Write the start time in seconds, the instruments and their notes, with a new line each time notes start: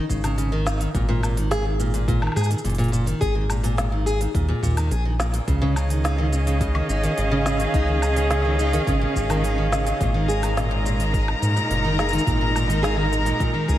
0.09 analog synth bass G#1, steel-string acoustic guitar C#3, kick, shaker
0.24 steel-string acoustic guitar C#3, open hi-hat, low woodblock, shaker
0.38 steel-string acoustic guitar C#3, open hi-hat, shaker
0.52 steel-string acoustic guitar D#3
0.66 steel-string acoustic guitar D#4, snare, shaker
0.80 steel-string acoustic guitar D#3, open hi-hat, shaker
0.94 analog synth bass G#1, steel-string acoustic guitar A#2, kick, open hi-hat, shaker
1.09 steel-string acoustic guitar A#2
1.23 steel-string acoustic guitar A#2, low woodblock, shaker
1.37 steel-string acoustic guitar D#3, open hi-hat
1.51 steel-string acoustic guitar G#4, snare, open hi-hat, shaker
1.65 steel-string acoustic guitar D#3
1.80 steel-string acoustic guitar A#2, shaker
1.94 steel-string acoustic guitar A#2, open hi-hat, shaker
2.08 steel-string acoustic guitar A#2, kick, open hi-hat, shaker
2.22 steel-string acoustic guitar D#3, low woodblock
2.27 low woodblock
2.32 low woodblock
2.36 analog synth bass G#2, steel-string acoustic guitar G#4, low woodblock, shaker
2.41 low woodblock, shaker
2.46 low woodblock
2.50 steel-string acoustic guitar D#3, open hi-hat, shaker
2.58 shaker
2.64 analog synth bass F#1, steel-string acoustic guitar A#2, open hi-hat, shaker
2.70 open hi-hat
2.75 steel-string acoustic guitar A#2, open hi-hat
2.79 open hi-hat
2.84 open hi-hat
2.88 steel-string acoustic guitar A#2, open hi-hat
2.94 shaker
3.06 steel-string acoustic guitar D#3, open hi-hat, shaker
3.21 analog synth bass G#1, steel-string acoustic guitar G#4, kick, open hi-hat, shaker
3.35 steel-string acoustic guitar D#3
3.50 steel-string acoustic guitar A#2, low woodblock, shaker
3.64 steel-string acoustic guitar A#2, open hi-hat, shaker
3.77 steel-string acoustic guitar A#2, snare, open hi-hat, shaker
3.92 steel-string acoustic guitar D#3
4.06 steel-string acoustic guitar G#4, shaker
4.20 steel-string acoustic guitar D#3, open hi-hat, shaker
4.34 analog synth bass D#2, steel-string acoustic guitar A#2, kick, open hi-hat, shaker
4.49 steel-string acoustic guitar A#2
4.63 analog synth bass D#2, steel-string acoustic guitar A#2, kick, shaker
4.77 steel-string acoustic guitar D#3, open hi-hat, low woodblock, shaker
4.91 analog synth bass A#1, steel-string acoustic guitar G#4, open hi-hat, shaker
5.05 steel-string acoustic guitar D#3
5.19 steel-string acoustic guitar A#2, snare, shaker
5.34 steel-string acoustic guitar A#2, open hi-hat, shaker
5.48 analog synth bass C#2, steel-string acoustic guitar C#3, string quartet C#4, kick, open hi-hat, shaker
5.59 steel-string acoustic guitar C#3, string quartet G#4
5.65 string quartet D#5
5.76 steel-string acoustic guitar C#3, low woodblock, shaker
5.90 steel-string acoustic guitar D#3, open hi-hat, shaker
6.03 steel-string acoustic guitar D#4, string quartet F5, snare, open hi-hat, shaker
6.18 steel-string acoustic guitar D#3
6.32 steel-string acoustic guitar C#3, shaker
6.47 steel-string acoustic guitar C#3, open hi-hat, shaker
6.61 steel-string acoustic guitar C#3, kick, open hi-hat, shaker
6.75 steel-string acoustic guitar D#3, low woodblock
6.89 analog synth bass G#1, steel-string acoustic guitar D#4, shaker
7.04 steel-string acoustic guitar D#3, open hi-hat, shaker
7.18 analog synth bass G#1, steel-string acoustic guitar C#3, open hi-hat, shaker
7.32 steel-string acoustic guitar C#3
7.46 steel-string acoustic guitar C#3, snare, shaker
7.60 steel-string acoustic guitar D#3, open hi-hat, shaker
7.74 analog synth bass C#2, steel-string acoustic guitar D#4, kick, open hi-hat, shaker
7.88 steel-string acoustic guitar D#3
8.02 steel-string acoustic guitar C#3, low woodblock, shaker
8.16 steel-string acoustic guitar C#3, open hi-hat, shaker
8.30 steel-string acoustic guitar C#3, snare, open hi-hat, shaker
8.45 steel-string acoustic guitar D#3
8.59 steel-string acoustic guitar D#4, shaker
8.73 steel-string acoustic guitar D#3, open hi-hat, shaker
8.87 analog synth bass G#1, steel-string acoustic guitar C#3, kick, open hi-hat, shaker
9.02 steel-string acoustic guitar C#3
9.15 analog synth bass G#1, steel-string acoustic guitar C#3, kick, shaker
9.30 steel-string acoustic guitar D#3, open hi-hat, low woodblock, shaker
9.44 steel-string acoustic guitar D#4, open hi-hat, shaker
9.58 steel-string acoustic guitar D#3
9.72 steel-string acoustic guitar C#3, snare, shaker
9.86 steel-string acoustic guitar C#3, open hi-hat, shaker
10.01 analog synth bass G#1, steel-string acoustic guitar A#2, string quartet G#3, kick, open hi-hat, shaker
10.14 steel-string acoustic guitar D#3
10.22 string quartet A#5
10.27 steel-string acoustic guitar G#4, string quartet A#4, shaker
10.41 steel-string acoustic guitar D#3, string quartet D#4, open hi-hat, low woodblock, shaker
10.57 steel-string acoustic guitar A#2, snare, open hi-hat, shaker
10.71 steel-string acoustic guitar A#2
10.85 steel-string acoustic guitar A#2, shaker
11.00 steel-string acoustic guitar D#3, open hi-hat, shaker
11.14 steel-string acoustic guitar G#4, kick, open hi-hat, shaker
11.28 steel-string acoustic guitar D#3, low woodblock
11.42 analog synth bass G#2, steel-string acoustic guitar A#2, shaker
11.56 steel-string acoustic guitar A#2, shaker
11.70 analog synth bass F#1, steel-string acoustic guitar A#2, open hi-hat, shaker
11.85 steel-string acoustic guitar D#3
11.99 steel-string acoustic guitar G#4, snare, shaker
12.09 steel-string acoustic guitar D#3, shaker
12.13 open hi-hat
12.19 shaker
12.26 analog synth bass G#1, steel-string acoustic guitar A#2, kick, open hi-hat, shaker
12.41 steel-string acoustic guitar A#2
12.55 steel-string acoustic guitar A#2, low woodblock, shaker
12.69 steel-string acoustic guitar D#3, open hi-hat, shaker
12.83 steel-string acoustic guitar G#4, snare, open hi-hat, shaker
12.97 steel-string acoustic guitar D#3
13.12 steel-string acoustic guitar A#2, shaker
13.25 steel-string acoustic guitar A#2, open hi-hat, shaker
13.39 steel-string acoustic guitar A#2, kick, open hi-hat, shaker
13.54 steel-string acoustic guitar D#3
13.68 analog synth bass C#2, steel-string acoustic guitar G#4, kick, shaker